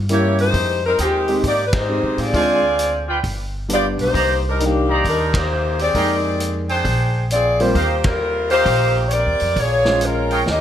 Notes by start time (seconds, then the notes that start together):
Already playing: G2
0.09 G3 A#3 C#4 E4 G4 C#5, closed hi-hat
0.39 G#3 D#4 G4 C5, open hi-hat
0.53 F2, kick, open hi-hat
0.85 G3 C4 D#4 A#4
0.99 D#2 D#3 G#3 C4 F4 G4 G#4 D#5 G5, closed hi-hat
1.28 G#3 C4 D#4 G4, open hi-hat
1.43 G#2 A#3 D#4 G4 D5, kick, open hi-hat
1.67 B4
1.73 G#3 D#4 G4 C5, kick, ride
1.89 G#3 C4 D#4 G4
2.03 C3
2.18 A2 C4 F4 G#4 D5, open hi-hat
2.33 D2 G#3 C4 D4 F4 C5 D5 G#5, kick, open hi-hat
2.79 closed hi-hat
3.08 F4 B4 D5 G5
3.24 G1, kick, open hi-hat
3.68 G3 B3 D4 G4, closed hi-hat
3.73 B3 F4 G4 D5
3.98 B1, open hi-hat
4.02 A#3 D#4 G4 C5
4.14 C2 D#4 C5 D5 A#5, kick, open hi-hat
4.48 G3 D4 D#4 A#4
4.60 G3 A#3 D4 D#4, closed hi-hat
4.64 D#3 A#3 D4 G4
4.88 D#4 C5 D5 A#5
5.04 D#2, kick, open hi-hat
5.08 G3 D4 D#4 A#4
5.34 A#3 D#4 G4 C5, kick, ride
5.79 C4 G4 G#4 D5, open hi-hat
5.95 F2 G#3 A#3 D#4 G#4 A#4 G5, kick, open hi-hat
6.40 closed hi-hat
6.69 D4 G#4 C5 G5, open hi-hat
6.85 A#1, kick, open hi-hat
7.31 C4 F4 G#4 D5, closed hi-hat
7.60 G3 A#3 C4 F4 G4 C5, open hi-hat
7.75 D#2 D#4 G4 C5 F5, kick, open hi-hat
8.04 G3 C4 F4 A#4, kick, ride
8.50 A#3 D#4 F4 G4 C5 F5, open hi-hat
8.65 A#1, kick, open hi-hat
9.08 G4 C#5 D5, closed hi-hat
9.12 C4 A#4
9.27 D#2
9.40 F2, open hi-hat
9.56 A#1 F4, kick, open hi-hat
9.60 A#3 G#4 C#5
9.85 G#3 C#4 F4 C5, snare
10.01 C#4 F4 A#4, closed hi-hat
10.05 G#3
10.31 F4 C#5 D#5 G5, open hi-hat
10.46 D#2, snare
10.50 C#4 G4 A#4 D#5